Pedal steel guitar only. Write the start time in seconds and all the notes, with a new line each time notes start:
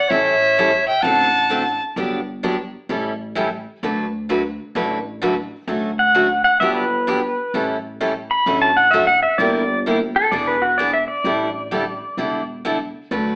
5.99 F#5
6.44 F#5
6.60 E5
6.75 B4
8.31 B5
8.62 A5
8.77 F#5
8.91 E5
9.07 F#5
9.23 E5
9.38 D5
9.54 D5
10.16 A4
10.31 D5
10.47 B4
10.62 F#4
10.78 D5
10.93 E5
11.08 D5